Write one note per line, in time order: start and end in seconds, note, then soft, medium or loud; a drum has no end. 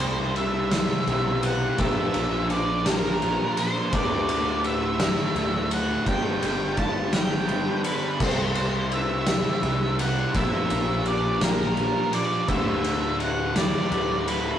0.00 0.87 C2 loud
0.00 1.05 C3 medium
0.00 1.05 G3 medium
0.00 1.06 C4 loud
0.00 1.06 E4 loud
0.00 1.06 G4 loud
0.00 0.33 C5 medium
0.00 1.07 C5 loud
0.00 ride medium
0.36 1.47 E5 loud
0.36 ride medium
0.71 1.77 C3 medium
0.71 1.78 G3 medium
0.71 1.77 C4 medium
0.71 1.77 E4 medium
0.71 1.77 G4 medium
0.71 1.76 C5 medium
0.71 snare loud
0.71 ride medium
1.07 1.69 B1 medium
1.07 1.77 C3 medium
1.07 1.77 G3 medium
1.07 1.77 C4 medium
1.07 1.78 E4 medium
1.07 1.78 G4 medium
1.07 1.78 C5 medium
1.07 ride medium
1.42 1.77 C3 medium
1.42 1.77 G3 medium
1.42 1.76 C4 medium
1.42 1.80 F#5 medium
1.42 ride medium
1.78 1.94 A#1 loud
1.78 3.19 A#2 medium
1.78 3.19 F3 medium
1.78 3.20 A#3 medium
1.78 3.23 D4 loud
1.78 3.20 F4 loud
1.78 3.21 A#4 loud
1.78 2.46 E5 medium
1.78 kick loud
1.78 ride loud
2.14 3.37 A#1 medium
2.14 ride medium
2.50 2.87 D5 medium
2.50 ride medium
2.85 3.91 A#2 medium
2.85 3.92 F3 medium
2.85 3.91 A#3 medium
2.85 3.94 D4 medium
2.85 3.91 F4 medium
2.85 3.90 A#4 medium
2.85 3.58 A#4 medium
2.85 snare loud
2.85 ride loud
3.21 3.90 A#2 medium
3.21 3.90 F3 medium
3.21 3.91 A#3 medium
3.21 3.94 D4 medium
3.21 3.91 F4 loud
3.21 3.92 A#4 medium
3.21 ride medium
3.55 3.91 A#2 medium
3.55 3.90 F3 medium
3.55 3.90 A#3 medium
3.55 3.91 C5 medium
3.55 ride medium
3.91 5.32 D2 loud
3.91 5.15 D2 loud
3.91 5.33 A2 medium
3.91 5.33 D3 loud
3.91 5.34 A3 loud
3.91 5.34 E4 loud
3.91 4.60 D5 loud
3.91 kick loud
3.91 ride loud
4.29 ride medium
4.64 5.75 E5 loud
4.64 ride medium
4.98 6.05 D2 medium
4.98 6.05 A2 medium
4.98 6.04 D3 medium
4.98 6.04 A3 medium
4.98 6.04 E4 medium
4.98 snare loud
4.98 ride medium
5.35 6.04 D2 medium
5.35 5.96 D2 loud
5.35 6.04 A2 medium
5.35 6.05 D3 medium
5.35 6.05 A3 medium
5.35 6.06 E4 medium
5.35 ride medium
5.70 6.04 D2 medium
5.70 6.05 A2 medium
5.70 6.04 D3 medium
5.70 6.04 F#5 loud
5.70 ride medium
6.06 6.22 G1 loud
6.06 7.46 G2 medium
6.06 7.47 D3 loud
6.06 7.47 G3 loud
6.06 7.48 B3 loud
6.06 7.48 D4 loud
6.06 7.48 G4 loud
6.06 6.77 G5 loud
6.06 kick loud
6.06 ride loud
6.42 7.65 G1 medium
6.42 ride medium
6.77 7.11 A5 loud
6.77 kick medium
6.77 ride medium
7.13 8.19 D3 medium
7.13 8.18 G3 medium
7.13 8.19 B3 medium
7.13 8.18 D4 medium
7.13 8.18 G4 medium
7.13 7.81 G5 loud
7.13 snare loud
7.13 ride loud
7.17 8.18 G2 medium
7.49 8.18 G2 medium
7.49 8.18 D3 medium
7.49 8.19 G3 medium
7.49 8.19 B3 medium
7.49 8.19 D4 medium
7.49 8.20 G4 medium
7.49 ride medium
7.84 8.19 G2 medium
7.84 8.18 D3 medium
7.84 8.18 G3 medium
7.84 8.22 B4 medium
7.84 ride medium
8.20 9.43 C2 loud
8.20 9.60 C3 medium
8.20 9.61 G3 medium
8.20 9.61 C4 medium
8.20 9.61 E4 loud
8.20 9.62 G4 loud
8.20 8.95 C5 loud
8.20 9.62 C5 loud
8.20 kick loud
8.20 crash loud
8.55 ride medium
8.92 9.95 E5 medium
8.92 ride medium
9.26 10.33 C3 medium
9.26 10.33 G3 medium
9.26 10.33 C4 medium
9.26 10.32 E4 medium
9.26 10.32 G4 medium
9.26 10.31 C5 medium
9.26 snare loud
9.26 ride loud
9.63 10.24 C2 loud
9.63 10.32 C3 medium
9.63 10.32 G3 medium
9.63 10.32 C4 medium
9.63 10.33 E4 medium
9.63 10.33 G4 medium
9.63 10.33 C5 medium
9.63 ride medium
9.97 10.32 C3 medium
9.97 10.32 G3 medium
9.97 10.31 C4 medium
9.97 10.36 F#5 medium
9.97 ride medium
10.33 10.50 A#1 loud
10.33 11.74 A#2 medium
10.33 11.75 F3 medium
10.33 11.75 A#3 medium
10.33 11.77 D4 medium
10.33 11.76 F4 medium
10.33 11.76 A#4 loud
10.33 11.07 E5 loud
10.33 kick loud
10.33 ride loud
10.70 11.93 A#1 medium
10.70 ride medium
11.05 11.40 D5 loud
11.05 ride medium
11.40 12.47 A#2 medium
11.40 12.47 F3 medium
11.40 12.47 A#3 medium
11.40 12.50 D4 medium
11.40 12.46 F4 medium
11.40 12.46 A#4 medium
11.40 12.15 A#4 medium
11.40 snare loud
11.40 ride medium
11.75 12.45 A#2 medium
11.75 12.46 F3 medium
11.75 12.46 A#3 medium
11.75 12.49 D4 medium
11.75 12.47 F4 medium
11.75 12.47 A#4 medium
11.75 ride medium
12.11 12.46 A#2 medium
12.11 12.46 F3 medium
12.11 12.45 A#3 medium
12.11 12.46 D5 medium
12.11 ride medium
12.46 13.88 D2 medium
12.46 13.71 D2 loud
12.46 13.88 A2 medium
12.46 13.89 D3 loud
12.46 13.89 A3 loud
12.46 13.90 E4 loud
12.46 13.16 E5 medium
12.46 kick loud
12.46 ride loud
12.84 ride medium
13.20 13.54 F#5 medium
13.20 ride medium
13.55 14.59 D2 medium
13.55 14.59 A2 medium
13.55 14.59 D3 medium
13.55 14.59 A3 medium
13.55 14.59 E4 medium
13.55 14.24 D5 medium
13.55 snare loud
13.55 ride loud
13.90 14.59 D2 medium
13.90 14.53 D2 loud
13.90 14.59 A2 medium
13.90 14.59 D3 medium
13.90 14.59 A3 medium
13.90 14.59 E4 loud
13.90 ride medium
14.26 14.59 D2 medium
14.26 14.59 A2 medium
14.26 14.59 D3 medium
14.26 14.59 B4 medium
14.26 ride medium